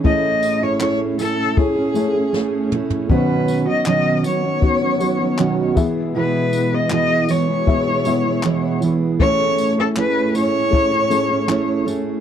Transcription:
<<
  \new Staff \with { instrumentName = "Cello" } { \time 4/4 \key a \lydian \tempo 4 = 79 dis''8. cis''16 cis''8 a'8 gis'4. r8 | b'8. dis''16 dis''8 cis''2 r8 | b'8. dis''16 dis''8 cis''2 r8 | cis''8. a'16 b'8 cis''2 r8 | }
  \new Staff \with { instrumentName = "Felt piano" } { \time 4/4 \key a \lydian <a e' gis' cis''>4. r8 <a e' gis' cis''>8 <a e' gis' cis''>4 r8 | <b dis' fis' bis' cis''>4. r8 <b dis' fis' cis''>8 <b dis' fis' cis''>4 <b e' gis' e''>8~ | <b e' gis' e''>4 r4 <b e' gis' e''>8 <b e' gis' e''>4 r8 | <a e' gis' cis''>4. r8 <a e' gis' cis''>8 <a e' gis' cis''>4 r8 | }
  \new Staff \with { instrumentName = "Steel-string acoustic guitar" } { \time 4/4 \key a \lydian <a cis' e' gis'>8. <cis' e' gis'>16 <a cis' e' gis'>8 <a cis' e'>8. <cis' e' gis'>16 <a cis' e' gis'>16 <cis' e' gis'>16 <a cis' e' gis'>8 <a cis' e' gis'>8 | <b, dis fis b cis' fis'>8. <fis b cis' fis'>16 <b, dis fis b cis' fis'>8 <fis b cis' fis'>16 <fis b cis' fis'>8 <fis b cis' fis'>16 <fis b cis' fis'>16 <fis b cis' fis'>16 <b, dis fis b cis' fis'>8 <e b e' gis'>8 | <b, e b e' gis'>8. <b e' gis'>16 <b, e b e' gis'>8 <e b e' gis'>16 <b e' gis'>8 <b e' gis'>16 <e b e' gis'>16 <b e' gis'>16 <b, e b e' gis'>8 <e b e' gis'>8 | <a cis' e' gis'>8. <cis' e' gis'>16 <a cis' e' gis'>8 <a cis' e' gis'>8. <cis' e' gis'>16 <a cis' e' gis'>16 <cis' e' gis'>16 <a cis' e' gis'>8 <a cis' e' gis'>8 | }
  \new Staff \with { instrumentName = "String section" } { \clef bass \time 4/4 \key a \lydian <a, a cis'>1 | <dis b>2.~ <dis b>8 <b, e gis>8~ | <b, e gis>1 | <a, a cis'>1 | }
  \new DrumStaff \with { instrumentName = "Drums" } \drummode { \time 4/4 bd8 tamb8 hc8 tamb8 bd8 tamb8 sn8 toml16 tomfh16 | bd8 tamb8 hc8 tamb8 bd8 tamb8 hc8 <bd tamb>8 | r8 tamb8 hc8 tamb8 bd8 tamb8 hc8 tamb8 | bd8 tamb8 hc8 tamb8 bd8 tamb8 hc8 tamb8 | }
>>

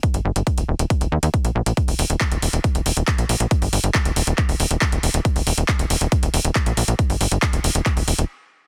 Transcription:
<<
  \new Staff \with { instrumentName = "Analog synth bass" } { \clef bass \time 4/4 \key ees \major \tempo 4 = 138 r16 g,,16 g,,16 g,,16 r16 ees,,16 ees,,16 ees,,16 r16 ees,,16 ees,16 ees,16 r16 bes,,16 bes,,16 bes,,16 | r16 ees,,16 ees,,16 ees,,16 r16 ees,,16 ees,,16 ees,,16 r16 ees,,16 ees,,16 ees,,16 r16 bes,,16 bes,,16 bes,,16 | r16 g,,16 g,,16 g,,16 r16 ees,,16 ees,,16 ees,,16 r16 ees,,16 ees,,16 ees,,16 r16 ees,,16 ees,,16 ees,,16 | r16 ees,,16 ees,,16 ees,,16 r16 ees,,16 ees,,16 ees,,16 r16 ees,,16 ees,,16 ees,,16 r16 bes,,16 bes,,16 bes,,16 |
r16 g,,16 g,,16 g,,16 r16 ees,,16 ees,,16 ees,,16 r16 ees,,16 ees,,16 ees,,16 r4 | }
  \new DrumStaff \with { instrumentName = "Drums" } \drummode { \time 4/4 <hh bd>16 hh8 hh16 <hh bd>16 hh8 hh16 <hh bd>16 hh8 hh16 <hh bd>16 hh8 hh16 | <hh bd>16 hho16 hho16 hh16 <hc hh bd>16 hh16 hho16 hh16 <hh bd>16 hh16 hho16 hh16 <hc hh bd>16 hh16 hho16 hh16 | <hh bd>16 hho16 hho16 hh16 <hc hh bd>16 hh16 hho16 hh16 <hc hh bd>16 hho16 hho16 hh16 <hc hh bd>16 hh16 hho16 hh16 | <hh bd>16 hho16 hho16 hh16 <hc hh bd>16 hh16 hho16 hh16 <hh bd>16 hh16 hho16 hh16 <hc hh bd>16 hh16 hho16 hh16 |
<hh bd>16 hho16 hho16 hh16 <hc hh bd>16 hh16 hho16 hh16 <hc hh bd>16 hho16 hho16 hh16 r4 | }
>>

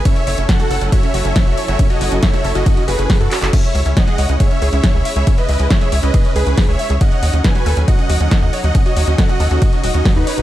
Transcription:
<<
  \new Staff \with { instrumentName = "Supersaw synth" } { \time 4/4 \key cis \minor \tempo 4 = 138 <cis'' e''>8. r16 <a' fis''>8. r16 <cis'' e''>8. <cis'' e''>8. r16 <cis'' e''>16~ | <cis'' e''>16 <fis' dis''>8. <cis'' e''>8. <fis' dis''>8. <gis' b'>8. <fis' a'>8. | <cis'' e''>8. r16 <dis'' fis''>8. r16 <cis'' e''>8. <cis'' e''>8. r16 <cis'' e''>16~ | <cis'' e''>16 <b' dis''>8. <cis'' e''>8. <b' dis''>8. <gis' b'>8. <cis'' e''>8. |
<dis'' fis''>8. r16 <b' gis''>8. r16 <dis'' fis''>8. <dis'' fis''>8. r16 <dis'' fis''>16~ | <dis'' fis''>16 <fis' dis''>8. <dis'' fis''>8. <fis' dis''>8. <fis' dis''>8. <dis' b'>8. | }
  \new Staff \with { instrumentName = "Synth pluck" } { \time 4/4 \key cis \minor cis'16 cis''16 cis''16 cis'16 a'16 fis'16 a'16 cis'16 fis'16 cis'16 fis'16 cis'16 a'16 fis'16 cis''16 fis'16 | cis'16 cis''16 cis''16 cis'16 a'16 fis'16 a'16 cis'16 fis'16 cis'16 fis'16 cis'16 a'16 fis'16 cis''16 fis'16 | cis'16 e''16 e''16 cis'16 cis''16 gis'16 cis''16 cis'16 gis'16 cis'16 gis'16 cis'16 cis''16 gis'16 e''16 gis'16 | cis'16 e''16 e''16 cis'16 cis''16 gis'16 cis''16 cis'16 gis'16 cis'16 gis'16 cis'16 cis''16 gis'16 e''16 gis'16 |
cis'16 cis''16 cis''16 cis'16 a'16 fis'16 a'16 cis'16 fis'16 cis'16 fis'16 cis'16 a'16 fis'16 cis''16 fis'16 | cis'16 cis''16 cis''16 cis'16 a'16 fis'16 a'16 cis'16 fis'16 cis'16 fis'16 cis'16 a'16 fis'16 cis''16 fis'16 | }
  \new Staff \with { instrumentName = "String section" } { \time 4/4 \key cis \minor << { <fis e' a' gis''>1~ | <fis e' a' gis''>1 | <gis e'>1~ | <gis e'>1 |
<fis dis'>1~ | <fis dis'>1 | } \\ { cis'1~ | cis'1~ | cis'1~ | cis'1~ |
cis'1~ | cis'1 | } >> }
  \new Staff \with { instrumentName = "Analog synth bass" } { \clef bass \time 4/4 \key cis \minor r8 fis,,16 fis,,16 r8 fis,,16 fis,,16 r8 fis,,16 fis,,16 r16 fis,,16 r16 fis,,16 | r8 fis,,16 fis,,16 r8 fis,,16 fis,,16 r8 fis,,16 fis,,16 r16 fis,16 r16 fis,,16 | r8 cis,16 cis,16 r8 cis,16 cis,16 r8 cis,16 cis,16 r16 cis,16 r16 cis,16 | r8 cis,16 cis,16 r8 cis,16 cis,16 r8 cis,16 cis,16 r16 cis,16 r16 cis,16 |
r8 dis,16 dis,16 r8 dis,16 dis,16 r8 dis,16 dis,16 r16 dis,16 r16 dis,16 | r8 dis,16 dis,16 r8 dis,16 dis,16 r8 dis,,16 dis,16 r16 dis,16 r16 dis,,16 | }
  \new DrumStaff \with { instrumentName = "Drums" } \drummode { \time 4/4 <hh bd cymr>16 hh16 hho16 hh16 <hh bd cymr sn>16 <hh sn>16 hho16 hh16 <hh bd cymr>16 hh16 hho16 hh16 <hh bd cymr sn>8 hho16 hh16 | <hh bd cymr>16 hh16 hho16 hh16 <hh bd cymr sn>16 <hh sn>16 hho16 hh16 <hh bd cymr>16 hh16 hho16 hh16 <hho bd cymr sn>16 hh16 <hc hho>16 <hc hh>16 | <cymc hh bd cymr>16 hh16 hho16 hh16 <hh bd cymr sn>16 <hh sn>16 hho16 hh16 <hh bd cymr>16 hh16 hho16 hh16 <hh bd cymr sn>8 hho16 hh16 | <hh bd cymr>16 hh16 hho16 hh16 <hh bd cymr sn>16 <hh sn>16 hho16 hh16 <hh bd cymr>16 hh16 hho16 hh16 <hho bd cymr sn>8 hho16 hh16 |
<hh bd cymr>16 hh16 hho16 hh16 <hh bd cymr sn>16 <hh sn>16 hho16 hh16 <hh bd cymr>16 hh16 hho16 hh16 <hh bd cymr sn>8 hho16 hh16 | <hh bd cymr>16 hh16 hho16 hh16 <hh bd cymr sn>16 <hh sn>16 hho16 hh16 <hh bd cymr>16 hh16 hho16 hh16 <hho bd cymr sn>8 hho16 hh16 | }
>>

